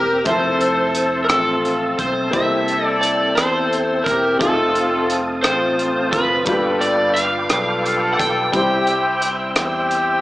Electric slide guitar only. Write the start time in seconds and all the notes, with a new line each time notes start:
Already playing: G4
0.27 C5
1.24 A#4
1.29 A4
1.99 C5
2.33 E5
2.86 D5
3.01 D5
3.35 C5
4.04 A#4
4.40 A4
5.43 C5
6.12 B4
6.81 D5
7.14 F5
8.13 F#5
8.19 G5
8.53 G5